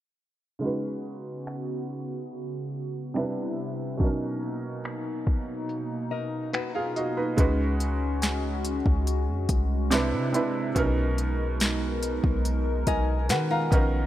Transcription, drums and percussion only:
1.47 finger snap loud
3.16 finger snap loud
4.00 kick medium
4.00 closed hi-hat medium
4.42 closed hi-hat medium
4.84 finger snap loud
4.84 closed hi-hat medium
5.27 kick medium
5.69 closed hi-hat medium
6.53 finger snap loud
6.53 closed hi-hat medium
6.96 closed hi-hat medium
7.38 kick loud
7.38 closed hi-hat medium
7.80 closed hi-hat medium
8.22 snare loud
8.22 closed hi-hat medium
8.65 closed hi-hat medium
8.86 kick loud
9.07 closed hi-hat medium
9.49 kick loud
9.49 closed hi-hat medium
9.91 snare loud
9.91 closed hi-hat medium
10.34 closed hi-hat medium
10.76 kick loud
10.76 closed hi-hat medium
11.18 closed hi-hat medium
11.60 snare loud
11.60 closed hi-hat medium
12.03 closed hi-hat medium
12.24 kick loud
12.45 closed hi-hat medium
12.87 kick loud
12.87 closed hi-hat medium
13.29 snare loud
13.29 closed hi-hat medium
13.72 kick loud
13.72 closed hi-hat medium

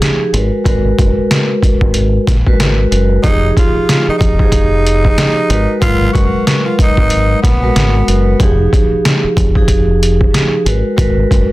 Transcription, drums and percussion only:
0.02 snare loud
0.02 closed hi-hat loud
0.34 closed hi-hat medium
0.65 kick loud
0.65 closed hi-hat medium
0.99 kick loud
0.99 closed hi-hat medium
1.31 snare loud
1.31 closed hi-hat loud
1.63 kick medium
1.63 closed hi-hat medium
1.81 kick medium
1.94 closed hi-hat loud
2.27 kick loud
2.27 snare soft
2.27 closed hi-hat medium
2.47 kick loud
2.60 snare loud
2.60 closed hi-hat loud
2.92 closed hi-hat medium
3.24 kick loud
3.24 closed hi-hat medium
3.57 kick loud
3.57 closed hi-hat medium
3.89 snare loud
3.89 closed hi-hat medium
4.21 kick medium
4.21 closed hi-hat medium
4.39 kick medium
4.52 kick medium
4.52 closed hi-hat loud
4.87 closed hi-hat medium
5.05 kick loud
5.18 snare loud
5.18 closed hi-hat loud
5.50 closed hi-hat medium
5.82 kick loud
5.82 closed hi-hat medium
6.15 kick loud
6.15 closed hi-hat medium
6.47 snare loud
6.47 closed hi-hat medium
6.79 kick medium
6.79 closed hi-hat medium
6.97 kick medium
7.10 closed hi-hat loud
7.44 kick loud
7.44 snare soft
7.44 closed hi-hat medium
7.76 snare loud
7.76 closed hi-hat loud
8.08 closed hi-hat medium
8.40 kick loud
8.40 closed hi-hat medium
8.73 kick loud
8.73 closed hi-hat medium
9.05 snare loud
9.05 closed hi-hat loud
9.37 kick medium
9.37 closed hi-hat medium
9.55 kick medium
9.68 kick medium
9.68 closed hi-hat loud
10.03 closed hi-hat medium
10.21 kick loud
10.34 snare loud
10.34 closed hi-hat loud
10.66 closed hi-hat medium
10.98 kick loud
10.98 closed hi-hat medium
11.31 kick loud
11.31 closed hi-hat medium

